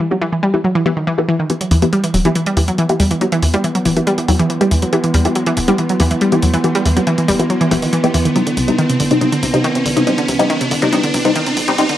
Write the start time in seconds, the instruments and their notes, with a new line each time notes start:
0.00 synth arpeggio sound E3
0.11 synth arpeggio sound F#3, synth stab B3 E4 G4
0.21 synth arpeggio sound E3
0.32 synth arpeggio sound E3
0.43 synth arpeggio sound G3
0.54 synth arpeggio sound E3, synth stab B3 E4 G4
0.64 synth arpeggio sound F#3
0.75 synth arpeggio sound E3
0.86 synth arpeggio sound E3, synth stab B3 E4 G4
0.97 synth arpeggio sound D#3
1.07 synth arpeggio sound E3
1.18 synth arpeggio sound E3, synth stab B3 E4 G4
1.29 synth arpeggio sound E3
1.39 synth arpeggio sound D#3
1.50 synth drone E3 B3, synth arpeggio sound E3, synth stab B3 E4 G4, closed hi-hat, riser
1.61 synth arpeggio sound F#3, closed hi-hat
1.71 analog synth bass E2, synth arpeggio sound E3, open hi-hat
1.82 synth arpeggio sound E3, synth stab B3 E4 G4, closed hi-hat
1.93 synth arpeggio sound G3, closed hi-hat
2.04 synth arpeggio sound E3, closed hi-hat
2.14 analog synth bass E1, synth arpeggio sound F#3, open hi-hat
2.25 synth arpeggio sound E3, synth stab B3 E4 G4, closed hi-hat
2.35 synth arpeggio sound E3, closed hi-hat
2.46 synth arpeggio sound G3, closed hi-hat
2.57 analog synth bass E2, synth arpeggio sound E3, synth stab B3 E4 G4, open hi-hat
2.68 synth arpeggio sound F#3, closed hi-hat
2.78 synth arpeggio sound E3, closed hi-hat
2.89 synth arpeggio sound E3, synth stab B3 E4 G4, closed hi-hat
3.00 analog synth bass E2, synth arpeggio sound G3, open hi-hat
3.11 synth arpeggio sound E3, closed hi-hat
3.21 synth arpeggio sound F#3, synth stab B3 E4 G4, closed hi-hat
3.32 synth arpeggio sound E3, closed hi-hat
3.43 analog synth bass E2, synth arpeggio sound E3, open hi-hat
3.54 synth arpeggio sound G3, synth stab B3 E4 G4, closed hi-hat
3.64 synth arpeggio sound E3, closed hi-hat
3.75 synth arpeggio sound F#3, closed hi-hat
3.85 analog synth bass E1, synth arpeggio sound E3, open hi-hat
3.97 synth arpeggio sound E3, synth stab B3 E4 G4, closed hi-hat
4.07 synth arpeggio sound G3, closed hi-hat
4.18 synth arpeggio sound E3, closed hi-hat
4.28 analog synth bass E2, synth arpeggio sound F#3, synth stab B3 E4 G4, open hi-hat
4.39 synth arpeggio sound E3, closed hi-hat
4.50 synth arpeggio sound E3, closed hi-hat
4.61 synth arpeggio sound G3, synth stab B3 E4 G4, closed hi-hat
4.71 analog synth bass E2, synth arpeggio sound E3, open hi-hat
4.82 synth arpeggio sound F#3, closed hi-hat
4.93 synth arpeggio sound E3, synth stab B3 E4 G4, closed hi-hat
5.04 synth arpeggio sound E3, closed hi-hat
5.14 analog synth bass E2, synth arpeggio sound G3, open hi-hat
5.25 synth arpeggio sound E3, synth stab B3 E4 G4, closed hi-hat
5.35 synth arpeggio sound F#3, closed hi-hat
5.46 synth arpeggio sound E3, closed hi-hat
5.57 analog synth bass E1, synth arpeggio sound E3, open hi-hat
5.68 synth arpeggio sound G3, synth stab B3 E4 G4, closed hi-hat
5.78 synth arpeggio sound E3, closed hi-hat
5.89 synth arpeggio sound F#3, closed hi-hat
6.00 analog synth bass E2, synth arpeggio sound E3, synth stab B3 E4 G4, open hi-hat
6.11 synth arpeggio sound E3, closed hi-hat
6.21 synth arpeggio sound G3, closed hi-hat
6.32 synth arpeggio sound E3, synth stab B3 E4 G4, closed hi-hat
6.42 analog synth bass E2, synth arpeggio sound F#3, open hi-hat
6.54 synth arpeggio sound E3, closed hi-hat
6.64 synth arpeggio sound E3, synth stab B3 E4 G4, closed hi-hat
6.75 synth arpeggio sound G3, closed hi-hat
6.86 analog synth bass E2, synth arpeggio sound E3, open hi-hat
6.97 synth arpeggio sound F#3, synth stab B3 E4 G4, closed hi-hat
7.07 synth arpeggio sound E3, closed hi-hat
7.18 synth arpeggio sound E3, closed hi-hat
7.28 analog synth bass E1, synth arpeggio sound G3, open hi-hat
7.39 synth arpeggio sound E3, synth stab B3 E4 G4, closed hi-hat
7.50 synth arpeggio sound F#3, closed hi-hat
7.61 synth arpeggio sound E3, closed hi-hat
7.71 analog synth bass E1, synth arpeggio sound E3, synth stab B3 E4 G4, open hi-hat
7.82 synth arpeggio sound D#3, open hi-hat
7.93 synth arpeggio sound E3, closed hi-hat
8.04 synth arpeggio sound E3, synth stab B3 E4 G4, closed hi-hat
8.14 analog synth bass E2, synth arpeggio sound E3, open hi-hat
8.25 synth arpeggio sound D#3, closed hi-hat
8.35 synth arpeggio sound C3, synth stab G3 C4 D#4, closed hi-hat
8.47 synth arpeggio sound D3, closed hi-hat
8.57 analog synth bass C2, synth arpeggio sound C3, open hi-hat
8.68 synth arpeggio sound C3, synth stab G3 C4 D#4, closed hi-hat
8.78 synth arpeggio sound D#3, closed hi-hat
8.89 synth arpeggio sound C3, closed hi-hat
9.00 analog synth bass G1, synth arpeggio sound D3, open hi-hat
9.11 synth arpeggio sound C3, synth stab G3 C4 D#4, closed hi-hat
9.21 synth arpeggio sound C3, synth stab G3 C4 D#4, closed hi-hat
9.32 synth arpeggio sound D3, closed hi-hat
9.43 analog synth bass C2, synth arpeggio sound C3, open hi-hat
9.54 synth arpeggio sound C3, synth stab G3 C4 D#4, closed hi-hat
9.64 synth arpeggio sound D#3, closed hi-hat
9.75 synth arpeggio sound C3, closed hi-hat
9.86 analog synth bass C2, synth arpeggio sound D3, open hi-hat
9.96 synth arpeggio sound C3, synth stab G3 C4 D#4, closed hi-hat
10.07 synth arpeggio sound C3, synth stab G3 C4 D#4, closed hi-hat
10.18 synth arpeggio sound D3, closed hi-hat
10.28 analog synth bass C2, synth arpeggio sound C3, open hi-hat
10.39 synth arpeggio sound C3, synth stab G3 C4 D#4, closed hi-hat
10.50 synth arpeggio sound D#3, closed hi-hat
10.61 synth arpeggio sound C3, closed hi-hat
10.71 analog synth bass G1, synth arpeggio sound D3, open hi-hat
10.82 synth arpeggio sound C3, synth stab G3 C4 D#4, closed hi-hat
10.93 synth arpeggio sound C3, synth stab G3 C4 D#4, closed hi-hat
11.03 synth arpeggio sound D3, closed hi-hat
11.14 analog synth bass C2, synth arpeggio sound C3, open hi-hat
11.25 synth arpeggio sound C3, synth stab G3 C4 D#4, closed hi-hat
11.36 synth arpeggio sound D#3, closed hi-hat
11.47 synth arpeggio sound C3, closed hi-hat
11.57 analog synth bass C2, synth arpeggio sound D3, open hi-hat
11.68 synth arpeggio sound C3, synth stab G3 C4 D#4, closed hi-hat
11.78 synth arpeggio sound C3, synth stab G3 C4 D#4, closed hi-hat
11.89 synth arpeggio sound D3, closed hi-hat